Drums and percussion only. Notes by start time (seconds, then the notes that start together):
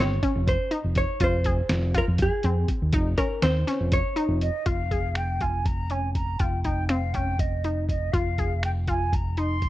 0.23 kick, closed hi-hat
0.47 kick, closed hi-hat
0.71 closed hi-hat
0.95 kick, closed hi-hat
1.20 kick, closed hi-hat
1.44 kick, closed hi-hat
1.69 snare, closed hi-hat
1.94 kick, closed hi-hat
2.18 kick, closed hi-hat
2.43 closed hi-hat
2.68 kick, closed hi-hat
2.93 kick, closed hi-hat
3.18 kick, closed hi-hat
3.42 snare, closed hi-hat
3.68 snare, closed hi-hat
3.92 kick, closed hi-hat
4.17 closed hi-hat
4.41 closed hi-hat
4.66 kick, closed hi-hat
4.91 kick, closed hi-hat
5.15 finger snap, closed hi-hat
5.41 kick, closed hi-hat
5.65 kick, closed hi-hat
5.90 closed hi-hat
6.15 kick, closed hi-hat
6.39 kick, closed hi-hat
6.64 kick, closed hi-hat
6.89 finger snap, closed hi-hat
7.14 kick, closed hi-hat
7.39 kick, closed hi-hat
7.64 closed hi-hat
7.89 kick, closed hi-hat
8.13 kick, closed hi-hat
8.38 kick, closed hi-hat
8.63 finger snap, closed hi-hat
8.88 kick, closed hi-hat
9.13 kick, closed hi-hat
9.37 closed hi-hat
9.62 kick, closed hi-hat